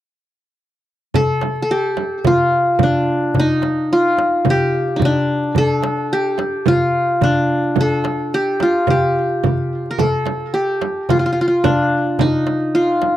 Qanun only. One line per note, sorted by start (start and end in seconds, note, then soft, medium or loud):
1.15 1.62 A4 medium
1.62 2.81 A4 medium
1.71 2.96 G4 medium
2.27 3.62 F4 medium
2.83 3.45 D4 medium
3.39 4.84 D#4 medium
3.93 5.27 F4 medium
4.50 5.76 G4 medium
4.96 5.11 D#4 soft
5.05 6.54 D4 medium
5.58 6.76 A4 medium
6.13 7.38 G4 medium
6.68 8.03 F4 medium
7.23 8.73 D4 medium
7.81 8.99 A4 medium
8.34 8.90 G4 medium
8.63 9.97 F4 medium
8.90 10.16 G4 medium
9.91 10.05 A#4 medium
9.99 11.18 A4 medium
10.54 11.79 G4 medium
11.10 11.19 F4 medium
11.19 11.25 F4 medium
11.26 11.32 F4 medium
11.33 11.41 F4 soft
11.41 11.47 F4 medium
11.48 12.74 F4 medium
11.64 12.27 D4 medium
12.21 13.17 D#4 medium
12.75 13.17 F4 medium